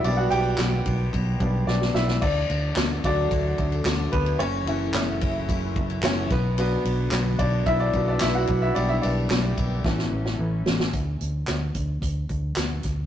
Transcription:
0.04 B1 G3 B3 D4 D5, ride
0.17 F#4 F#5
0.30 B1 G4 G5, ride
0.58 B1, snare, clap, ride
0.86 B1, kick, ride
1.13 B1, kick, ride
1.40 B1 G3 B3 D4, kick, ride
1.67 B1 D4 D5, snare
1.82 snare
1.94 B1 E4 E5, snare
2.08 snare
2.22 D2 D3 F#3 A3 D4 F#4 D5, kick, crash
2.50 D2, ride
2.76 D2, snare, clap, ride
3.04 D2 F#3 A3 D4 D5, kick, ride
3.31 D2, kick, ride
3.58 D2, kick, ride
3.72 ride
3.85 D2, snare, clap, ride
4.12 D2 B3 B4, kick, ride
4.26 ride
4.39 F#1 C#3 F#3 C#4 E4 C#5, ride
4.66 F#1 E3 A3 C#4, ride
4.94 F#1, snare, clap, ride
5.21 F#1, kick, ride
5.49 F#1, kick, ride
5.76 F#1, kick, ride
5.90 ride
6.03 F#1 E3 A3 C#4 C#5, snare, clap, ride
6.30 B1 D3 B3 F#4 B4, kick, snare, ride
6.58 F#3 B3 D4 B4, ride
6.85 B1, ride
7.11 B1, snare, clap, ride
7.39 B1 D4 D5, kick, ride
7.66 B1 E4 E5, kick, ride
7.80 D4 D5
7.93 B1 F#3 B3 D4, kick, ride
8.08 D4 D5
8.20 B1 E4 E5, snare, clap, ride
8.35 F#4 F#5
8.47 B1, kick, ride
8.62 E4 E5
8.75 B1 G3 B3 D4 G4 D5, ride
8.89 E4 E5
9.02 B1 D4 D5, ride
9.30 B1, snare, clap, ride
9.57 B1, kick, ride
9.84 A1 E3 A3 C#4 A4, kick, snare
9.98 snare
10.12 A1
10.26 snare
10.39 A1
10.66 A1, snare
10.80 snare
10.93 D2, kick, closed hi-hat
11.21 D2, closed hi-hat
11.47 D2, snare, clap, closed hi-hat
11.75 D2, kick, closed hi-hat
12.02 D2, kick, closed hi-hat
12.29 D2, kick, closed hi-hat
12.56 D2, snare, clap, closed hi-hat
12.83 D2, kick, snare, closed hi-hat

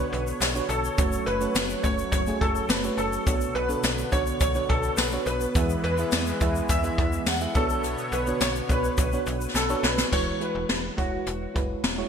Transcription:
Already playing: B2 D3 B3 D4 B4 C#5
0.00 F#4 C#5
0.13 B1, closed hi-hat
0.27 shaker
0.41 B1, snare, closed hi-hat, tambourine, shaker
0.55 B3 D4 F#4 C#5, shaker
0.69 B1 A4, closed hi-hat, shaker
0.84 shaker
0.98 F#1 F#3 A3 C#4 F#4 C#5, kick, closed hi-hat, shaker
1.12 shaker
1.26 F#1 B4, closed hi-hat
1.40 A3 C#4 F#4 C#5, shaker
1.55 F#1, snare, closed hi-hat, tambourine, shaker
1.70 shaker
1.83 F#1 A3 C#4 F#4 C#5, kick, closed hi-hat, shaker
1.99 shaker
2.12 F#1 C#5, kick, closed hi-hat, shaker
2.27 A3 C#4 F#4 G#4, shaker
2.41 F#1 A4, kick, closed hi-hat
2.56 shaker
2.69 F#1 B4, snare, closed hi-hat, tambourine, shaker
2.83 A3 C#4 F#4 C#5, shaker
2.97 F#1 A4, closed hi-hat, shaker
3.13 shaker
3.26 B1 B2 D3 B3 D4 F#4 C#5, kick, closed hi-hat, shaker
3.41 shaker
3.55 B1 B4, closed hi-hat
3.69 B3 D4 F#4 A4, shaker
3.84 B1, snare, closed hi-hat, tambourine, shaker
3.98 shaker
4.11 B1 B3 D4 F#4 C#5, kick, closed hi-hat, shaker
4.27 shaker
4.40 B1 C#5, kick, closed hi-hat, shaker
4.55 B3 D4 F#4 C#5, shaker
4.69 B1 A4, kick, closed hi-hat
4.83 shaker
4.97 B1 B4, snare, closed hi-hat, tambourine, shaker
5.12 B3 D4 F#4 C#5, shaker
5.26 B1 B4, closed hi-hat, shaker
5.41 shaker
5.55 E2 E3 G#3 B3 E4 G#4 E5, kick, closed hi-hat, shaker
5.69 shaker
5.84 E2 B4, closed hi-hat
5.98 B3 E4 G#4 E5, shaker
6.12 E2, snare, closed hi-hat, tambourine, shaker
6.27 shaker
6.41 E2 B3 E4 G#4 E5, kick, closed hi-hat, shaker
6.55 shaker
6.69 E2 E5, kick, closed hi-hat, shaker
6.83 B3 E4 G#4 E5, shaker
6.98 E2, kick, closed hi-hat
7.12 shaker
7.26 E2 F#5, snare, closed hi-hat, tambourine, shaker
7.41 B3 E4 G#4 E5, shaker
7.55 B1 B2 D3 B3 D4 F#4 A4 C#5, kick, closed hi-hat, shaker
7.70 shaker
7.84 closed hi-hat, shaker
7.98 shaker
8.12 B1 B4, closed hi-hat, shaker
8.27 B3 D4 F#4 C#5, shaker
8.41 B1 C#5, snare, closed hi-hat, tambourine, shaker
8.56 shaker
8.69 B1 B3 D4 F#4 B4 C#5, kick, closed hi-hat, shaker
8.84 shaker
8.98 B1, kick, closed hi-hat, shaker
9.12 B3 D4 F#4 C#5, shaker
9.26 B1, closed hi-hat, shaker
9.41 shaker
9.54 B1 A4, snare, shaker
9.69 B3 D4 F#4 C#5, shaker
9.83 B1 B4, snare, shaker
9.98 snare, shaker
10.12 E1 E3 G#3 E4 F#4 B4 C#5, kick, crash
10.40 G#3 E4 F#4 B4, closed hi-hat
10.55 E1
10.69 E1 B4, snare, closed hi-hat
10.97 E1 G#3 E4 F#4 C#5, kick, closed hi-hat
11.26 E1, closed hi-hat
11.54 F#1 G#3 E4 F#4 B4, kick, closed hi-hat
11.84 E1, snare, closed hi-hat
11.97 G#3 E4 F#4 C#5

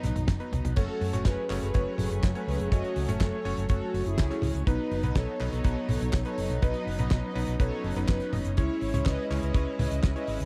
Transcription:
Already playing: F#3 B3 D#4 B4
0.03 B1, snare, closed hi-hat, high tom
0.16 B1, closed hi-hat, mid tom
0.28 F#1, kick, snare, clap, closed hi-hat, mid tom
0.40 F#3 B3 D#4 B4, closed hi-hat
0.52 B1, closed hi-hat, mid tom
0.64 B1, closed hi-hat, mid tom
0.76 F#1 F#3 A3 C#4 F#4 A4 C#5, kick, closed hi-hat, crash
1.01 F#2, open hi-hat
1.13 F#1 A3 C#4 F#4 C#5, closed hi-hat, high tom
1.25 F#1 G#4 B4, kick, snare, clap, closed hi-hat
1.50 F#1 A3 C#4 F#4 C#5, clap, open hi-hat
1.62 F#1 G#4 B4, closed hi-hat
1.74 F#1 A3 C#4 F#4 C#5, kick, closed hi-hat
1.98 F#1 G#4 B4, open hi-hat, high tom
2.11 F#1, closed hi-hat
2.23 F#1, kick, snare, clap, closed hi-hat
2.35 A3 C#4 F#4 G#4 B4 C#5, closed hi-hat
2.48 C#2, open hi-hat
2.60 F#1, closed hi-hat
2.72 F#1 A3 C#4 F#4 C#5 D#5, kick, closed hi-hat
2.84 closed hi-hat
2.96 C#2, open hi-hat
3.08 F#1 A3 C#4 F#4 A4 C#5, closed hi-hat, high tom
3.20 F#1, kick, snare, clap, closed hi-hat
3.33 A4 C#5
3.45 F#1 A3 C#4 F#4 C#5, open hi-hat
3.57 F#1, closed hi-hat
3.69 F#1 A3 C#4 F#4 A4 C#5, kick, closed hi-hat
3.94 F#1, open hi-hat
4.06 F#1 E4 G#4, closed hi-hat
4.18 C#2, kick, snare, clap, closed hi-hat
4.30 A3 C#4 F#4 C#5, snare, closed hi-hat
4.42 C#2, open hi-hat, high tom
4.55 C#2, closed hi-hat
4.67 B1 F#3 B3 D#4 B4, kick, closed hi-hat
4.91 F#1, open hi-hat
5.03 B1 F#3 B3 D#4 B4, closed hi-hat, high tom
5.15 B1 A4 C#5, kick, snare, clap, closed hi-hat
5.40 B1 F#3 B3 D#4 B4, clap, open hi-hat
5.52 B1 A4 C#5, closed hi-hat
5.64 B1 F#3 B3 D#4 B4, kick, closed hi-hat
5.89 B1 A4 C#5, open hi-hat, high tom
6.01 B1, closed hi-hat
6.13 B1, kick, snare, clap, closed hi-hat
6.25 F#3 B3 D#4 A4 B4 C#5, closed hi-hat
6.38 F#1, open hi-hat
6.50 B1, closed hi-hat
6.62 B1 F#3 B3 C#4 D#4 B4 D#5, kick, closed hi-hat
6.74 closed hi-hat
6.87 F#1, open hi-hat
6.99 B1 F#3 B3 D#4 B4 D#5, closed hi-hat, high tom
7.11 B1, kick, snare, clap, closed hi-hat
7.23 B4 D#5
7.35 B1 F#3 B3 D#4 B4, open hi-hat
7.47 B1, closed hi-hat
7.60 B1 F#3 B3 D#4 A4 B4 C#5, kick, closed hi-hat
7.84 F#1, open hi-hat
7.96 F#1 F#3 B3 D#4 B4, closed hi-hat
8.08 F#1, kick, snare, clap, closed hi-hat
8.20 snare, closed hi-hat
8.33 F#1 F#3 B3 D#4 D#5, open hi-hat, high tom
8.45 F#1, closed hi-hat
8.57 C#2 G#3 C#4 E4 C#5, kick, closed hi-hat
8.81 G#1, open hi-hat
8.94 C#2 G#3 C#4 E4 C#5, closed hi-hat, high tom
9.05 C#2 B4 D#5, kick, snare, clap, closed hi-hat
9.30 C#2 G#3 C#4 E4 C#5, clap, open hi-hat
9.43 C#2 B4 D#5, closed hi-hat
9.54 C#2 G#3 C#4 E4 C#5, kick, closed hi-hat
9.79 C#2 B4 D#5, open hi-hat, high tom
9.91 C#2, closed hi-hat
10.03 C#2, kick, snare, clap, closed hi-hat
10.16 G#3 C#4 E4 B4 C#5 D#5, closed hi-hat
10.27 G#1, open hi-hat
10.40 C#2, closed hi-hat

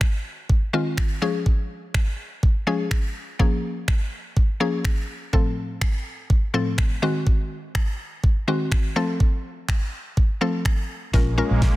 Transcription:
0.01 finger snap, kick
0.49 kick
0.73 D#3 G#3 C4 F4
0.97 finger snap, kick
1.22 F3 G#3 C#4 G#4
1.46 kick
1.94 finger snap, kick
2.43 kick
2.67 F3 G#3 C#4 G#4
2.91 finger snap, kick
3.39 F3 A#3 C#4 G#4, kick
3.88 finger snap, kick
4.37 kick
4.60 F3 A#3 C#4 G#4
4.85 finger snap, kick
5.33 A2 F3 A3 C4 A4, kick
5.81 finger snap, kick
6.30 kick
6.54 A2 F3 A3 C4 A4
6.78 finger snap, kick
7.02 D#3 G#3 C4 F#4
7.27 kick
7.75 finger snap, kick
8.24 kick
8.48 D#3 G#3 C4 F#4
8.72 finger snap, kick
8.96 F3 A3 C4 A4
9.20 kick
9.69 finger snap, kick
10.17 kick
10.41 F3 A3 C4 A4
10.65 finger snap, kick
11.13 A#1 G#3 A#3 C#4 F4 A#4, kick, snare
11.38 G#3 C#4 F4 A#4
11.51 A#1
11.62 kick, snare

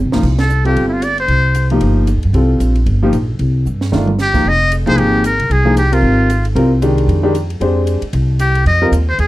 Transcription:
0.05 C2
0.12 C#2 F3 A#3 D#4 F4, snare
0.23 C2, kick, crash
0.39 A4, snare, ride
0.50 hi-hat pedal
0.65 G3 C4 F4 G4 A4, ride
0.76 G1, ride
0.88 E4
0.93 F4
1.02 D5, hi-hat pedal, ride
1.18 C5, ride
1.28 C2, ride
1.55 hi-hat pedal, ride
1.70 F3 A#3 D#4 G4, ride
1.81 G1, ride
2.07 hi-hat pedal, ride
2.16 D#2
2.23 G2, ride
2.33 C2 G3 C4 F4 A4, ride
2.60 A#1, hi-hat pedal, ride
2.75 ride
2.86 G1, ride
3.02 F3 A#3 D#4 G4
3.13 A#1, hi-hat pedal, ride
3.39 C2, ride
3.65 G2, hi-hat pedal
3.81 snare
3.92 G1 D#3 A3 D4 F4, snare
4.07 mid tom
4.19 G4, snare, hi-hat pedal
4.34 F3 A#3 D#4 G4, kick, crash
4.45 F1 D#5
4.72 hi-hat pedal, ride
4.86 C2 F3 A#3 D#4 G#4 C5, ride
4.97 G#1 G4, ride
5.24 A#4, hi-hat pedal, ride
5.39 C2, ride
5.50 C2 G#4, ride
5.65 F3 A#3 D#4 G#4
5.77 G4, hi-hat pedal, ride
5.92 G3 C4 F4 A#4, ride
6.03 G#1
6.30 hi-hat pedal, ride
6.45 ride
6.55 C2 G3 C4 F4 A#4, ride
6.82 D#3 G#3 D4 G4, hi-hat pedal, ride
6.98 ride
7.08 F2, ride
7.23 D#3 G#3 D4 G4
7.35 hi-hat pedal, ride
7.50 ride
7.60 F2 G#3 D4 G4 C5, ride
7.87 hi-hat pedal, ride
8.02 muted upright bass stroke, ride
8.13 C2, ride
8.39 G4, hi-hat pedal, ride
8.55 ride
8.65 F2 D#5, ride
8.82 G3 C4 F4 A#4
8.91 D#2, hi-hat pedal, ride
9.09 C5
9.18 D#2 G#4, ride

